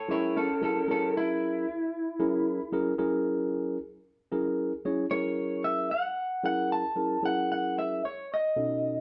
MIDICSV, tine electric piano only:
0, 0, Header, 1, 2, 480
1, 0, Start_track
1, 0, Tempo, 530035
1, 72, Time_signature, 4, 2, 24, 8
1, 8155, End_track
2, 0, Start_track
2, 0, Title_t, "Tine electric piano"
2, 0, Program_c, 0, 4
2, 77, Note_on_c, 0, 54, 67
2, 77, Note_on_c, 0, 64, 62
2, 77, Note_on_c, 0, 68, 61
2, 78, Note_on_c, 0, 61, 62
2, 81, Note_on_c, 0, 70, 69
2, 433, Note_off_c, 0, 54, 0
2, 433, Note_off_c, 0, 64, 0
2, 433, Note_off_c, 0, 68, 0
2, 434, Note_off_c, 0, 61, 0
2, 435, Note_off_c, 0, 70, 0
2, 554, Note_on_c, 0, 54, 64
2, 558, Note_on_c, 0, 61, 61
2, 558, Note_on_c, 0, 68, 60
2, 558, Note_on_c, 0, 70, 75
2, 559, Note_on_c, 0, 64, 67
2, 732, Note_off_c, 0, 54, 0
2, 734, Note_off_c, 0, 70, 0
2, 735, Note_off_c, 0, 61, 0
2, 735, Note_off_c, 0, 64, 0
2, 735, Note_off_c, 0, 68, 0
2, 793, Note_on_c, 0, 54, 69
2, 794, Note_on_c, 0, 61, 59
2, 794, Note_on_c, 0, 64, 56
2, 795, Note_on_c, 0, 68, 59
2, 795, Note_on_c, 0, 70, 82
2, 1498, Note_off_c, 0, 54, 0
2, 1498, Note_off_c, 0, 64, 0
2, 1499, Note_off_c, 0, 61, 0
2, 1499, Note_off_c, 0, 68, 0
2, 1499, Note_off_c, 0, 70, 0
2, 1987, Note_on_c, 0, 61, 75
2, 1988, Note_on_c, 0, 54, 85
2, 1990, Note_on_c, 0, 64, 78
2, 1991, Note_on_c, 0, 68, 70
2, 1992, Note_on_c, 0, 70, 82
2, 2348, Note_off_c, 0, 54, 0
2, 2348, Note_off_c, 0, 61, 0
2, 2349, Note_off_c, 0, 64, 0
2, 2350, Note_off_c, 0, 68, 0
2, 2350, Note_off_c, 0, 70, 0
2, 2467, Note_on_c, 0, 54, 84
2, 2467, Note_on_c, 0, 61, 73
2, 2468, Note_on_c, 0, 68, 75
2, 2472, Note_on_c, 0, 64, 76
2, 2475, Note_on_c, 0, 70, 96
2, 2649, Note_off_c, 0, 54, 0
2, 2649, Note_off_c, 0, 61, 0
2, 2649, Note_off_c, 0, 68, 0
2, 2651, Note_off_c, 0, 64, 0
2, 2653, Note_off_c, 0, 70, 0
2, 2702, Note_on_c, 0, 68, 77
2, 2703, Note_on_c, 0, 64, 73
2, 2704, Note_on_c, 0, 54, 82
2, 2704, Note_on_c, 0, 61, 76
2, 2706, Note_on_c, 0, 70, 91
2, 3412, Note_off_c, 0, 68, 0
2, 3413, Note_off_c, 0, 64, 0
2, 3414, Note_off_c, 0, 54, 0
2, 3414, Note_off_c, 0, 61, 0
2, 3415, Note_off_c, 0, 70, 0
2, 3908, Note_on_c, 0, 61, 69
2, 3911, Note_on_c, 0, 68, 74
2, 3912, Note_on_c, 0, 54, 70
2, 3914, Note_on_c, 0, 64, 66
2, 3915, Note_on_c, 0, 70, 86
2, 4269, Note_off_c, 0, 61, 0
2, 4270, Note_off_c, 0, 54, 0
2, 4270, Note_off_c, 0, 68, 0
2, 4271, Note_off_c, 0, 64, 0
2, 4272, Note_off_c, 0, 70, 0
2, 4393, Note_on_c, 0, 54, 73
2, 4395, Note_on_c, 0, 68, 72
2, 4396, Note_on_c, 0, 61, 76
2, 4398, Note_on_c, 0, 73, 84
2, 4400, Note_on_c, 0, 64, 70
2, 4572, Note_off_c, 0, 54, 0
2, 4573, Note_off_c, 0, 61, 0
2, 4573, Note_off_c, 0, 68, 0
2, 4574, Note_off_c, 0, 73, 0
2, 4575, Note_off_c, 0, 64, 0
2, 4629, Note_on_c, 0, 54, 69
2, 4631, Note_on_c, 0, 61, 57
2, 4633, Note_on_c, 0, 64, 56
2, 4633, Note_on_c, 0, 70, 71
2, 4634, Note_on_c, 0, 68, 53
2, 5336, Note_off_c, 0, 54, 0
2, 5337, Note_off_c, 0, 61, 0
2, 5338, Note_off_c, 0, 64, 0
2, 5338, Note_off_c, 0, 70, 0
2, 5339, Note_off_c, 0, 68, 0
2, 5826, Note_on_c, 0, 64, 63
2, 5827, Note_on_c, 0, 54, 65
2, 5828, Note_on_c, 0, 68, 54
2, 5831, Note_on_c, 0, 61, 52
2, 5831, Note_on_c, 0, 70, 66
2, 6188, Note_off_c, 0, 54, 0
2, 6188, Note_off_c, 0, 64, 0
2, 6189, Note_off_c, 0, 68, 0
2, 6190, Note_off_c, 0, 61, 0
2, 6190, Note_off_c, 0, 70, 0
2, 6302, Note_on_c, 0, 54, 61
2, 6303, Note_on_c, 0, 68, 62
2, 6304, Note_on_c, 0, 61, 54
2, 6305, Note_on_c, 0, 64, 65
2, 6307, Note_on_c, 0, 70, 72
2, 6486, Note_off_c, 0, 54, 0
2, 6487, Note_off_c, 0, 68, 0
2, 6488, Note_off_c, 0, 61, 0
2, 6488, Note_off_c, 0, 64, 0
2, 6489, Note_off_c, 0, 70, 0
2, 6543, Note_on_c, 0, 54, 70
2, 6545, Note_on_c, 0, 64, 63
2, 6547, Note_on_c, 0, 68, 64
2, 6548, Note_on_c, 0, 61, 55
2, 6553, Note_on_c, 0, 70, 60
2, 7254, Note_off_c, 0, 54, 0
2, 7255, Note_off_c, 0, 64, 0
2, 7256, Note_off_c, 0, 68, 0
2, 7257, Note_off_c, 0, 61, 0
2, 7259, Note_off_c, 0, 70, 0
2, 7755, Note_on_c, 0, 47, 64
2, 7755, Note_on_c, 0, 61, 57
2, 7755, Note_on_c, 0, 69, 61
2, 7757, Note_on_c, 0, 66, 51
2, 7758, Note_on_c, 0, 63, 57
2, 8113, Note_off_c, 0, 47, 0
2, 8113, Note_off_c, 0, 61, 0
2, 8113, Note_off_c, 0, 69, 0
2, 8114, Note_off_c, 0, 66, 0
2, 8115, Note_off_c, 0, 63, 0
2, 8155, End_track
0, 0, End_of_file